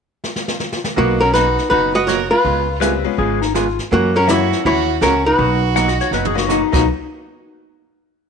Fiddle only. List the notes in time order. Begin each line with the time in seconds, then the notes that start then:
0.97 B3
1.21 F#4
1.33 F#4
1.69 F#4
1.94 B4
2.06 A#4
2.30 F4
3.94 C#4
4.18 F#4
4.30 F#4
4.65 F#4
5.04 F#4
5.26 F#4